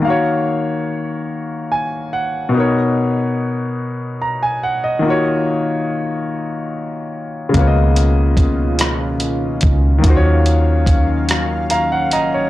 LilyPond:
<<
  \new Staff \with { instrumentName = "Grand piano" } { \time 6/8 \key ees \minor \tempo 4. = 48 << { r2 aes''8 ges''8 | r2 ais''16 aes''16 fis''16 dis''16~ | dis''16 r2 r8. | r2. |
r2 <f'' bes''>16 ges''16 <ees'' bes''>16 des''16 | } \\ { <ees bes ges' des'' f''>2. | <b, b dis' ais' des''>2. | <ees bes f' ges' des''>2. | <des aes bes ces' f' des'' ees''>2. |
<ees bes f' ges' c'' des''>2. | } >> }
  \new Staff \with { instrumentName = "Analog synth pad" } { \time 6/8 \key ees \minor << { r2. | r2. | r2. | <ces f'>2. |
<ges f''>2. | } \\ { r2. | r2. | r2. | <ees des'>2.~ |
<ees des'>2. | } >> }
  \new Staff \with { instrumentName = "Fingered electric bass" } { \clef bass \time 6/8 \key ees \minor r2. | r2. | r2. | des,2~ des,8 des,8 |
ees,2~ ees,8 bes,,8 | }
  \new DrumStaff \with { instrumentName = "Drums" } \drummode { \time 6/8 r4. r4. | r4. r4. | r4. r4. | <hh bd>8 hh8 <hh bd>8 <hh ss>8 hh8 <hh bd>8 |
<hh bd>8 hh8 <hh bd>8 <hh ss>8 hh8 hh8 | }
>>